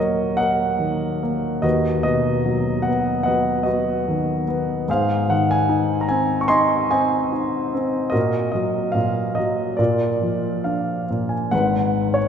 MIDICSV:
0, 0, Header, 1, 2, 480
1, 0, Start_track
1, 0, Key_signature, -6, "minor"
1, 0, Tempo, 839161
1, 936, Time_signature, 4, 2, 24, 8
1, 937, Tempo, 811908
1, 5257, Tempo, 854701
1, 7130, End_track
2, 0, Start_track
2, 0, Title_t, "Grand piano"
2, 0, Program_c, 0, 0
2, 0, Control_c, 0, 64, 127
2, 0, Note_on_c, 0, 39, 41
2, 0, Note_on_c, 0, 46, 34
2, 0, Note_on_c, 0, 54, 39
2, 0, Note_on_c, 0, 58, 38
2, 0, Note_on_c, 0, 66, 45
2, 0, Note_on_c, 0, 70, 45
2, 0, Note_on_c, 0, 73, 54
2, 0, Note_on_c, 0, 75, 63
2, 196, Note_off_c, 0, 46, 0
2, 203, Note_off_c, 0, 58, 0
2, 209, Note_off_c, 0, 75, 0
2, 210, Note_off_c, 0, 70, 0
2, 211, Note_on_c, 0, 78, 78
2, 212, Note_on_c, 0, 58, 36
2, 218, Note_on_c, 0, 70, 48
2, 218, Note_on_c, 0, 75, 46
2, 451, Note_on_c, 0, 51, 35
2, 694, Note_off_c, 0, 58, 0
2, 703, Note_on_c, 0, 58, 41
2, 912, Note_off_c, 0, 70, 0
2, 912, Note_off_c, 0, 75, 0
2, 913, Note_off_c, 0, 54, 0
2, 914, Note_off_c, 0, 39, 0
2, 916, Note_off_c, 0, 51, 0
2, 917, Note_off_c, 0, 66, 0
2, 927, Note_on_c, 0, 75, 68
2, 931, Note_off_c, 0, 58, 0
2, 931, Note_on_c, 0, 39, 46
2, 934, Note_on_c, 0, 66, 49
2, 936, Note_on_c, 0, 71, 46
2, 945, Control_c, 0, 64, 0
2, 951, Note_off_c, 0, 73, 0
2, 953, Note_off_c, 0, 78, 0
2, 1050, Control_c, 0, 64, 127
2, 1162, Note_off_c, 0, 75, 0
2, 1169, Note_off_c, 0, 66, 0
2, 1169, Note_off_c, 0, 71, 0
2, 1170, Note_on_c, 0, 75, 75
2, 1175, Note_on_c, 0, 47, 38
2, 1178, Note_on_c, 0, 66, 43
2, 1178, Note_on_c, 0, 71, 41
2, 1421, Note_on_c, 0, 54, 40
2, 1638, Note_on_c, 0, 78, 65
2, 1666, Note_on_c, 0, 59, 42
2, 1668, Note_off_c, 0, 75, 0
2, 1871, Note_off_c, 0, 78, 0
2, 1880, Note_on_c, 0, 78, 66
2, 1883, Note_off_c, 0, 71, 0
2, 1892, Note_on_c, 0, 71, 48
2, 1893, Note_on_c, 0, 75, 50
2, 1897, Note_off_c, 0, 54, 0
2, 1906, Note_on_c, 0, 54, 42
2, 2107, Note_off_c, 0, 75, 0
2, 2112, Note_off_c, 0, 47, 0
2, 2114, Note_off_c, 0, 66, 0
2, 2116, Note_on_c, 0, 75, 61
2, 2120, Note_off_c, 0, 71, 0
2, 2129, Note_on_c, 0, 71, 39
2, 2130, Note_on_c, 0, 66, 44
2, 2133, Note_off_c, 0, 59, 0
2, 2136, Note_off_c, 0, 78, 0
2, 2142, Note_on_c, 0, 59, 44
2, 2382, Note_on_c, 0, 51, 38
2, 2579, Note_off_c, 0, 75, 0
2, 2610, Note_off_c, 0, 59, 0
2, 2619, Note_on_c, 0, 59, 46
2, 2824, Note_off_c, 0, 66, 0
2, 2824, Note_off_c, 0, 71, 0
2, 2825, Note_off_c, 0, 39, 0
2, 2832, Note_off_c, 0, 54, 0
2, 2840, Note_off_c, 0, 51, 0
2, 2847, Note_off_c, 0, 59, 0
2, 2856, Note_on_c, 0, 44, 52
2, 2861, Control_c, 0, 64, 0
2, 2863, Note_on_c, 0, 68, 52
2, 2864, Note_on_c, 0, 72, 53
2, 2871, Note_on_c, 0, 77, 69
2, 2962, Control_c, 0, 64, 127
2, 3096, Note_on_c, 0, 51, 39
2, 3101, Note_on_c, 0, 78, 68
2, 3107, Note_off_c, 0, 77, 0
2, 3207, Note_off_c, 0, 78, 0
2, 3225, Note_on_c, 0, 80, 77
2, 3334, Note_on_c, 0, 63, 49
2, 3522, Note_on_c, 0, 82, 54
2, 3546, Note_off_c, 0, 80, 0
2, 3565, Note_off_c, 0, 82, 0
2, 3567, Note_on_c, 0, 80, 75
2, 3575, Note_on_c, 0, 60, 46
2, 3754, Note_off_c, 0, 80, 0
2, 3758, Note_on_c, 0, 85, 59
2, 3790, Note_off_c, 0, 68, 0
2, 3791, Note_off_c, 0, 72, 0
2, 3800, Note_off_c, 0, 63, 0
2, 3800, Note_on_c, 0, 84, 87
2, 3802, Note_on_c, 0, 80, 64
2, 3803, Note_off_c, 0, 85, 0
2, 3809, Note_on_c, 0, 63, 46
2, 3809, Note_on_c, 0, 75, 63
2, 4027, Note_off_c, 0, 51, 0
2, 4043, Note_off_c, 0, 80, 0
2, 4045, Note_off_c, 0, 75, 0
2, 4051, Note_off_c, 0, 84, 0
2, 4052, Note_on_c, 0, 72, 54
2, 4052, Note_on_c, 0, 80, 76
2, 4053, Note_off_c, 0, 60, 0
2, 4054, Note_on_c, 0, 75, 54
2, 4061, Note_on_c, 0, 60, 46
2, 4288, Note_off_c, 0, 63, 0
2, 4297, Note_on_c, 0, 63, 40
2, 4536, Note_off_c, 0, 60, 0
2, 4545, Note_on_c, 0, 60, 47
2, 4747, Note_off_c, 0, 75, 0
2, 4748, Note_off_c, 0, 44, 0
2, 4748, Note_off_c, 0, 72, 0
2, 4755, Note_on_c, 0, 75, 71
2, 4760, Note_off_c, 0, 63, 0
2, 4768, Note_on_c, 0, 70, 50
2, 4769, Note_on_c, 0, 66, 49
2, 4771, Note_off_c, 0, 60, 0
2, 4776, Control_c, 0, 64, 0
2, 4779, Note_on_c, 0, 46, 48
2, 4793, Note_off_c, 0, 80, 0
2, 4875, Control_c, 0, 64, 127
2, 4995, Note_off_c, 0, 75, 0
2, 5004, Note_on_c, 0, 75, 60
2, 5018, Note_on_c, 0, 54, 41
2, 5241, Note_on_c, 0, 77, 61
2, 5250, Note_off_c, 0, 46, 0
2, 5259, Note_on_c, 0, 46, 45
2, 5262, Note_off_c, 0, 75, 0
2, 5484, Note_on_c, 0, 75, 61
2, 5489, Note_off_c, 0, 54, 0
2, 5493, Note_off_c, 0, 77, 0
2, 5497, Note_on_c, 0, 54, 40
2, 5709, Note_off_c, 0, 70, 0
2, 5710, Note_off_c, 0, 66, 0
2, 5718, Note_off_c, 0, 46, 0
2, 5719, Note_on_c, 0, 74, 55
2, 5727, Note_off_c, 0, 54, 0
2, 5727, Note_on_c, 0, 70, 39
2, 5729, Note_on_c, 0, 65, 39
2, 5730, Note_on_c, 0, 46, 49
2, 5734, Note_off_c, 0, 75, 0
2, 5739, Control_c, 0, 64, 0
2, 5828, Control_c, 0, 64, 127
2, 5970, Note_on_c, 0, 53, 36
2, 6210, Note_on_c, 0, 77, 55
2, 6213, Note_on_c, 0, 62, 36
2, 6437, Note_off_c, 0, 74, 0
2, 6461, Note_off_c, 0, 46, 0
2, 6469, Note_on_c, 0, 46, 38
2, 6575, Note_on_c, 0, 80, 47
2, 6593, Note_off_c, 0, 77, 0
2, 6682, Note_off_c, 0, 70, 0
2, 6683, Note_off_c, 0, 53, 0
2, 6683, Note_off_c, 0, 65, 0
2, 6689, Note_off_c, 0, 62, 0
2, 6700, Note_on_c, 0, 78, 71
2, 6702, Note_off_c, 0, 46, 0
2, 6703, Note_on_c, 0, 32, 49
2, 6703, Note_on_c, 0, 44, 49
2, 6705, Note_off_c, 0, 80, 0
2, 6712, Note_on_c, 0, 71, 51
2, 6714, Control_c, 0, 64, 0
2, 6821, Control_c, 0, 64, 127
2, 7050, Note_on_c, 0, 73, 65
2, 7069, Note_off_c, 0, 78, 0
2, 7130, Note_off_c, 0, 32, 0
2, 7130, Note_off_c, 0, 44, 0
2, 7130, Note_off_c, 0, 71, 0
2, 7130, Note_off_c, 0, 73, 0
2, 7130, End_track
0, 0, End_of_file